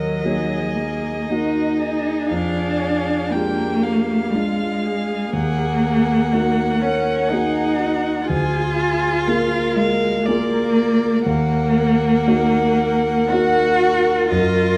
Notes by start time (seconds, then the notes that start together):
Already playing: D#2 F#3 A#4 D#5
0.25 A#3 D#4 F#4 G#4
0.75 A#3
1.30 A#3 D#4 F#4
1.83 G#4
2.31 F2 D4 F5
3.30 G#3 A#3 G5
3.34 D4 F4 G4
3.84 F5
4.30 G#3 F4
4.34 G#3 D4 F4
4.84 G#4
5.32 D#2 A#3 F#5
6.33 A#3 D#4 F#4
6.81 C#4 A#4
7.29 A#3 D#4 G#4
7.33 F#4
7.80 F#4
8.26 D2 F4 G#4
8.31 G#5
9.28 A#3 F4 G#4 A#4 F5
9.75 G#3 F5
10.23 A#3 D5
10.28 A#3 F4 G#4 A#4
11.23 D#2 A#3 A#4 F#5
12.27 A#3 D#4 F#4
13.30 A#3 D#4 F#4
14.29 F#2 F4 D#5